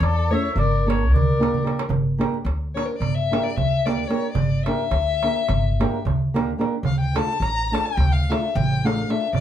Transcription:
0.00 E2 A4 D5, darbuka tek
0.30 A3 C#4 E4 A4 C#5 E5
0.46 darbuka tek
0.55 G1 A#4 D5, darbuka tek, darbuka dum
0.75 darbuka tek
0.86 A#3 D4 G4 A4 A#4 C#5
0.90 darbuka tek
1.03 darbuka tek
1.11 D2 A#4 D5
1.16 darbuka dum
1.30 darbuka tek
1.39 A#3 D4 G4 A#4, darbuka tek
1.54 darbuka dum
1.63 A#3 D4 G4 A#4
1.67 darbuka tek
1.79 darbuka tek
1.89 G1, darbuka dum
2.18 A#3 D4 G4 A#4, darbuka tek
2.34 darbuka tek
2.45 D2, darbuka tek
2.75 A#3 D4 G4 A#4 C#5, darbuka tek
2.86 A#4
2.90 darbuka tek
2.98 G1 D5, darbuka tek, darbuka dum
3.15 E5
3.31 A#3 D4 G4 A#4, darbuka tek
3.44 D5, darbuka tek
3.56 D2 E5, darbuka dum
3.73 darbuka tek
3.85 A#3 D4 G4 A#4 D5, darbuka tek
4.08 A#3 D4 G4 A#4 C#5, darbuka tek
4.32 G1 D5, darbuka dum
4.64 A#3 D4 G4 E5, darbuka tek
4.68 A#4
4.78 darbuka tek
4.91 D2, darbuka tek
5.22 A#3 D4 G4 A#4, darbuka tek
5.36 darbuka tek
5.49 G1, darbuka tek, darbuka dum
5.80 A#3 D4 G4 A#4, darbuka tek
5.94 darbuka tek
6.05 D2, darbuka dum
6.22 darbuka tek
6.34 A#3 D4 G4 A#4, darbuka tek
6.58 A#3 D4 G4 A#4, darbuka tek
6.83 D2 F5, darbuka dum
7.01 G5
7.14 A3 D4 F4 A4 A5, darbuka tek
7.29 darbuka tek
7.40 A1 A#5, darbuka tek
7.71 A3 D4 F4 A4 A5, darbuka tek
7.85 G5, darbuka tek
7.97 D2, darbuka tek, darbuka dum
8.12 F5
8.29 A3 D4 F4 A4 E5, darbuka tek
8.45 darbuka tek
8.55 A1 G5, darbuka dum
8.72 darbuka tek
8.84 A3 D4 F4 A4 F5, darbuka tek
9.09 A3 D4 F4 A4 E5, darbuka tek
9.33 G1 D5, darbuka dum

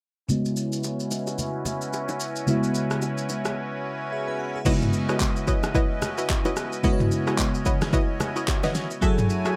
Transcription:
0.28 C#3 G#3 B3 C#4 E4 F#4 B4 C#5 D#5, low conga, shaker
0.45 shaker
0.57 shaker
0.73 shaker
0.84 high bongo, shaker
1.00 shaker
1.11 low bongo, shaker
1.27 high bongo, shaker
1.39 low conga, shaker
1.65 high bongo, low bongo, low conga, shaker
1.82 shaker
1.93 high bongo, shaker
2.09 low bongo, shaker
2.20 shaker
2.36 shaker
2.47 C#3 G#3 B3 E4 F#4 E5, low conga, shaker
2.64 shaker
2.75 shaker
2.91 cross-stick, shaker
3.02 high bongo, shaker
3.18 shaker
3.29 low bongo, shaker
3.45 cross-stick, high bongo, shaker
4.12 G#4 E5
4.28 B4 G#5
4.39 F#5
4.55 G#4 E5
4.65 C#3 G#3 B3 C#4 D#4 E4 F#4 B4 C#5 D#5, kick, crash, low conga, shaker
4.73 E4
4.82 mid tom, shaker
4.93 shaker
5.09 E4 F#4 B4 C#5 D#5, cross-stick, shaker
5.20 kick, clap, high bongo, shaker
5.36 shaker
5.47 E4 F#4 B4 C#5 D#5, kick, shaker
5.64 cross-stick, high bongo, low bongo, shaker
5.75 E4 F#4 B4 C#5 D#5, kick, low conga, shaker
6.02 cross-stick, high bongo, low bongo, low conga, shaker
6.18 E4 F#4 B4 C#5 D#5, shaker
6.30 kick, clap, high bongo, shaker
6.45 E4 F#4 B4 C#5 D#5, low bongo, shaker
6.57 cross-stick, shaker
6.73 shaker
6.83 C#3 G#3 B3 E4 F#4 B4 C#5 D#5, kick, low conga, shaker
6.93 C#5
7.00 mid tom, shaker
7.11 shaker
7.27 E4 F#4 B4 C#5 D#5, cross-stick, shaker
7.38 kick, clap, high bongo, shaker
7.55 shaker
7.66 E4 F#4 B4 C#5 D#5, kick, shaker
7.82 cross-stick, snare, high bongo, low bongo, shaker
7.93 E4 F#4 B4 C#5 D#5, kick, low conga, shaker
8.20 cross-stick, high bongo, low bongo, low conga, shaker
8.36 E4 F#4 B4 C#5 D#5, shaker
8.48 kick, clap, high bongo, shaker
8.63 E4 F#4 B4 C#5 D#5, snare, low bongo, shaker
8.75 snare, shaker
8.91 shaker
9.01 F#3 A3 E4 F#4 G#4 A4 E5 G#5, kick, low conga, shaker
9.18 mid tom, shaker
9.30 shaker
9.45 F#4 G#4 A4 E5, cross-stick, shaker

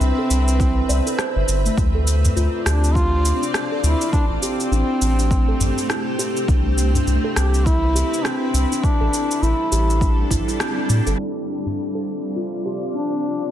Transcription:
Already playing: C4 B4 E5
0.00 C2, shaker
0.19 A4
0.30 C2, shaker
0.48 shaker
0.60 E4, kick, shaker
0.89 C2 D5, shaker
1.07 A4, shaker
1.19 C5, cross-stick, shaker
1.36 G1
1.48 G1, shaker
1.65 A3, shaker
1.77 D2 C4 F4 D5, kick, shaker
1.95 A4
2.07 shaker
2.25 udu, shaker
2.36 D2 F4, shaker
2.66 D2 D4 G4, cross-stick, shaker
2.84 shaker
2.95 D4 F4, kick, shaker
3.25 shaker
3.42 D4, shaker
3.54 cross-stick, shaker
3.72 A4
3.83 D2 E4, shaker
4.01 shaker
4.12 A3 C4 D4 E4 G4, kick, shaker
4.30 A1
4.42 C4 G4, shaker
4.60 shaker
4.71 A1 D4, shaker
5.01 A1, shaker
5.19 D4, shaker
5.31 kick, shaker
5.48 A4
5.60 A1, udu, shaker
5.78 shaker
5.89 E4, cross-stick, shaker
6.19 G4, shaker
6.37 shaker
6.48 C2 D4 E4 B4, kick, shaker
6.78 shaker
6.95 D4, udu, shaker
7.07 C2, shaker
7.24 A4
7.36 C2 G4, cross-stick, shaker
7.54 shaker
7.66 E4, kick, shaker
7.95 G4, shaker
8.14 shaker
8.25 C4 D4, cross-stick, shaker
8.54 C2, shaker
8.72 D4, shaker
8.84 G3 D4 A4, kick, shaker
9.01 A1 A4
9.14 shaker
9.31 shaker
9.42 A1 E4, shaker
9.72 A1 G4, shaker
9.90 shaker
10.01 D4, kick, shaker
10.30 A1 E4, kick, udu, shaker
10.48 E4, shaker
10.60 C4, cross-stick, shaker
10.78 D4
10.89 A2, shaker
11.07 G1 A4, shaker
11.19 C4 D4 F4 D5
11.66 D4, udu
11.95 A4
12.36 F4
12.66 G4
12.95 D4
13.42 D4

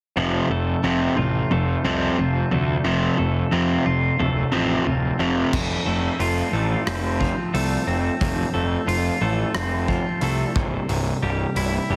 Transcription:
0.17 F1 F2 C3 F3
0.49 F1 F2 C3 A3
0.83 F1 F2 C3 F3 C4
1.17 A1 F2 C3 F4
1.51 F1 F2 C3 A3
1.84 C2 F2 C3 F3 C4
2.18 F1 F2 C3 F3
2.51 D2 F2 C3 A3
2.84 F1 F2 C3 F3
3.18 F1 F2 C3 A3
3.52 F2 C3 F3 C4
3.86 F1 F2 C3 F4
4.19 D1 F2 C3 A3
4.52 A1 F2 C3 F3 C4
4.86 D1 F2 C3 F3
5.19 F1 F2 C3 F3
5.53 F1 F2, kick, crash
5.86 F1 A3
6.19 F1 F4, open hi-hat
6.53 A1 A3
6.87 F1 C4, cross-stick, open hi-hat
7.20 F3, kick
7.54 C2 A3, open hi-hat
7.87 F1 C4
8.21 F1 F2, kick, open hi-hat
8.54 F1 A3
8.87 F1 F4, open hi-hat
9.21 A1 A3
9.54 F1 C4, cross-stick, open hi-hat
9.88 F3, kick
10.21 C2 A3, open hi-hat
10.55 C1 C2, kick
10.89 C1 C2, open hi-hat
11.22 C1 G3
11.56 C1 E4, open hi-hat
11.90 F1 G3

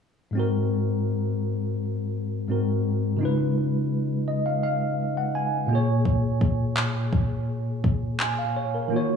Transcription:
0.31 G#2 G#3
0.35 C4 F#4
0.39 A#4
2.47 G#2 G#3 C4 F#4
2.52 A#4
3.17 C#3 G#3
3.21 D#4 F4
3.25 B4
4.28 D#5
4.46 F5
4.63 F5
5.17 F#5
5.35 G#5
5.67 A#2 A#3
5.71 F4 G#4
5.75 C#5
6.05 kick
6.41 kick
6.77 clap
7.13 kick
7.84 kick
8.20 G#5, clap
8.39 F5
8.57 C#5
8.75 A#4
8.88 D#3 A#3
8.92 F4 F#4
8.96 C#5

